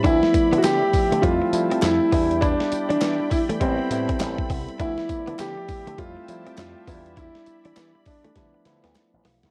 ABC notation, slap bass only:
X:1
M:4/4
L:1/16
Q:"Swing 16ths" 1/4=101
K:Ddor
V:1 name="Slap bass" clef=bass
D,, z2 D, D, z2 D, F,, z F, z F,, z E,,2- | E,, z2 E, E, z2 E, A,,, z A,, z A,,, z C,, z | D,, z2 D, D, z2 D, F,, z F, z F,, z E,,2- | E,, z2 E, E, z2 E, D, z D, D,, z A,,, B,,, C,, |]